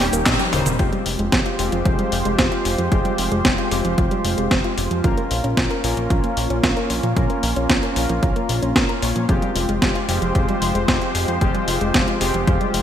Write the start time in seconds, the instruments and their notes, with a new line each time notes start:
Already playing: analog polysynth G3 A#3 D#4 G4, analog synth pad G3 A#3 C#4, analog synth lead G4
0.00 analog synth bass D#1, snare, open hi-hat
0.13 analog synth bass D#1, synth arpeggio sound A#3, closed hi-hat, cabasa
0.26 analog synth bass A#1, synth arpeggio sound D#4, kick, snare, clap, closed hi-hat, cabasa
0.39 synth arpeggio sound G4, closed hi-hat, high tom, cabasa
0.53 analog synth bass D#1, analog polysynth G3 A#3 D#4 C5, open hi-hat, mid tom
0.66 analog synth bass D#1, synth arpeggio sound D#3, closed hi-hat, mid tom, cabasa
0.79 analog synth bass F1, analog synth pad F3 G#3 F4 G4 C5, synth arpeggio sound F3, analog polysynth G#3 C4 F4 G4, kick, closed hi-hat
0.93 synth arpeggio sound G3, closed hi-hat
1.06 analog synth bass F1, open hi-hat
1.19 analog synth bass F1, synth arpeggio sound G#3, closed hi-hat
1.32 analog synth bass F1, synth arpeggio sound C4, kick, snare, closed hi-hat
1.46 synth arpeggio sound F4, closed hi-hat
1.59 analog synth bass F1, analog polysynth G#3 C4 F4 G4, open hi-hat
1.72 analog synth bass F1, synth arpeggio sound F3, closed hi-hat
1.85 analog synth bass F1, synth arpeggio sound F3, kick, closed hi-hat
1.99 synth arpeggio sound G3, closed hi-hat
2.12 analog synth bass F1, open hi-hat
2.25 analog synth bass F1, synth arpeggio sound G#3, closed hi-hat
2.39 analog synth bass F1, synth arpeggio sound C4, kick, snare, closed hi-hat
2.52 synth arpeggio sound F4, closed hi-hat
2.65 analog synth bass F1, open hi-hat
2.78 analog synth bass F2, synth arpeggio sound F3, closed hi-hat
2.92 analog synth bass F1, synth arpeggio sound F3, analog polysynth G#3 C4 F4 G4, kick, closed hi-hat
3.05 synth arpeggio sound G3, closed hi-hat
3.18 analog synth bass F1, open hi-hat
3.32 analog synth bass F1, synth arpeggio sound G#3, closed hi-hat
3.45 analog synth bass F1, synth arpeggio sound C4, kick, snare, closed hi-hat
3.58 synth arpeggio sound F4, closed hi-hat
3.71 analog synth bass F1, analog polysynth G#3 C4 F4 G4, open hi-hat
3.85 analog synth bass F1, synth arpeggio sound F3, closed hi-hat
3.98 analog synth bass F1, synth arpeggio sound F3, kick, closed hi-hat
4.11 synth arpeggio sound G3, closed hi-hat
4.25 analog synth bass F1, open hi-hat
4.38 analog synth bass F1, synth arpeggio sound G#3, closed hi-hat
4.51 analog synth bass F1, synth arpeggio sound C4, kick, snare, closed hi-hat
4.64 synth arpeggio sound F4, closed hi-hat
4.78 analog synth bass F1, open hi-hat
4.91 analog synth bass F2, synth arpeggio sound F3, closed hi-hat
5.04 analog synth bass A#1, synth arpeggio sound F3, analog synth pad A#3 C#4, analog polysynth A#3 C#4 F4 A#4, kick, closed hi-hat
5.17 synth arpeggio sound A#3, closed hi-hat
5.31 analog synth bass A#1, open hi-hat
5.44 analog synth bass A#1, synth arpeggio sound C#4, closed hi-hat
5.57 analog synth bass A#1, synth arpeggio sound F4, kick, snare, closed hi-hat
5.71 synth arpeggio sound A#4, closed hi-hat
5.84 analog synth bass A#1, analog polysynth A#3 C#4 F4 A#4, open hi-hat
5.97 analog synth bass A#1, synth arpeggio sound F3, closed hi-hat
6.10 analog synth bass A#1, synth arpeggio sound F3, kick, closed hi-hat
6.24 synth arpeggio sound A#3, closed hi-hat
6.37 analog synth bass A#1, open hi-hat
6.50 analog synth bass A#1, synth arpeggio sound C#4, closed hi-hat
6.63 analog synth bass A#1, synth arpeggio sound F4, kick, snare, closed hi-hat
6.77 synth arpeggio sound A#4, closed hi-hat
6.90 analog synth bass A#1, open hi-hat
7.03 analog synth bass A#2, synth arpeggio sound F3, closed hi-hat
7.17 analog synth bass A#1, synth arpeggio sound F3, analog polysynth A#3 C#4 F4 A#4, kick, closed hi-hat
7.30 synth arpeggio sound A#3, closed hi-hat
7.43 analog synth bass A#1, open hi-hat
7.56 analog synth bass A#1, synth arpeggio sound C#4, closed hi-hat
7.70 analog synth bass A#1, synth arpeggio sound F4, kick, snare, closed hi-hat
7.83 synth arpeggio sound A#4, closed hi-hat
7.96 analog synth bass A#1, analog polysynth A#3 C#4 F4 A#4, open hi-hat
8.09 analog synth bass A#1, synth arpeggio sound F3, closed hi-hat
8.23 analog synth bass A#1, synth arpeggio sound F3, kick, closed hi-hat
8.36 synth arpeggio sound A#3, closed hi-hat
8.49 analog synth bass A#1, open hi-hat
8.63 analog synth bass A#1, synth arpeggio sound C#4, closed hi-hat
8.76 analog synth bass A#1, synth arpeggio sound F4, kick, snare, closed hi-hat
8.89 synth arpeggio sound A#4, closed hi-hat
9.02 analog synth bass A#1, analog polysynth A#3 C#4 F4 C#5, open hi-hat
9.16 analog synth bass A#2, synth arpeggio sound F3, closed hi-hat
9.29 analog synth bass F1, synth arpeggio sound F3, analog synth pad F3 G#3 G4 C5, analog polysynth G#3 C4 F4 G4, kick, closed hi-hat
9.42 synth arpeggio sound G3, closed hi-hat
9.56 analog synth bass F1, open hi-hat
9.69 analog synth bass F1, synth arpeggio sound G#3, closed hi-hat
9.82 analog synth bass F1, synth arpeggio sound C4, kick, snare, closed hi-hat
9.95 synth arpeggio sound F4, closed hi-hat
10.09 analog synth bass F1, analog polysynth G#3 C4 F4 G4, open hi-hat
10.22 analog synth bass F1, synth arpeggio sound F3, closed hi-hat
10.35 analog synth bass F1, synth arpeggio sound F3, kick, closed hi-hat
10.48 synth arpeggio sound G3, closed hi-hat
10.62 analog synth bass F1, open hi-hat
10.75 analog synth bass F1, synth arpeggio sound G#3, closed hi-hat
10.88 analog synth bass F1, synth arpeggio sound C4, kick, snare, closed hi-hat
11.02 synth arpeggio sound F4, closed hi-hat
11.15 analog synth bass F1, open hi-hat
11.28 analog synth bass F2, synth arpeggio sound F3, closed hi-hat
11.41 analog synth bass F1, synth arpeggio sound F3, analog polysynth G#3 C4 F4 G4, kick, closed hi-hat
11.55 synth arpeggio sound G3, closed hi-hat
11.68 analog synth bass F1, open hi-hat
11.81 analog synth bass F1, synth arpeggio sound G#3, closed hi-hat
11.94 analog synth bass F1, synth arpeggio sound C4, kick, snare, closed hi-hat
12.08 synth arpeggio sound F4, closed hi-hat
12.21 analog synth bass F1, analog polysynth G#3 C4 F4 G4, open hi-hat
12.34 analog synth bass F1, synth arpeggio sound F3, closed hi-hat
12.47 analog synth bass F1, synth arpeggio sound F3, kick, closed hi-hat
12.61 synth arpeggio sound G3, closed hi-hat
12.74 analog synth bass F1, open hi-hat